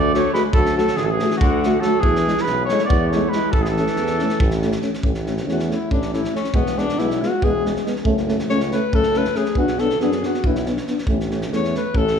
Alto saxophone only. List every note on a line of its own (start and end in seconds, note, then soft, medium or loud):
0.00 0.14 A3 loud
0.14 0.33 A3 medium
0.34 0.43 G#3 medium
0.54 0.76 F#3 medium
0.76 0.98 F#3 medium
0.96 1.09 D3 medium
1.08 1.13 F#3 medium
1.12 1.39 E3 medium
1.40 1.82 D3 medium
1.81 2.02 F#3 medium
2.00 2.46 E3 medium
2.44 2.68 G#3 medium
2.69 2.87 A3 medium
2.88 3.10 B3 medium
3.11 3.33 A3 medium
3.32 3.54 G#3 medium
3.52 3.63 E3 medium
3.63 3.66 E3 medium
3.63 4.62 E3 medium
5.51 5.61 F#4 medium
5.72 5.91 E4 medium
5.92 6.13 D4 medium
6.13 6.32 E4 medium
6.36 6.56 C#4 medium
6.55 6.80 B3 medium
6.78 7.00 D4 medium
6.98 7.23 E4 medium
7.21 7.45 F#4 medium
7.44 7.66 G#4 medium
8.50 8.60 C#5 loud
8.73 8.96 B4 medium
8.95 9.19 A4 loud
9.17 9.38 B4 medium
9.37 9.57 G#4 medium
9.58 9.81 F#4 medium
9.79 10.00 A4 loud
10.01 10.28 G#4 medium
10.26 10.48 F#4 medium
10.46 10.68 E4 medium
11.55 11.75 C#5 medium
11.77 11.98 B4 medium
11.97 12.19 A4 medium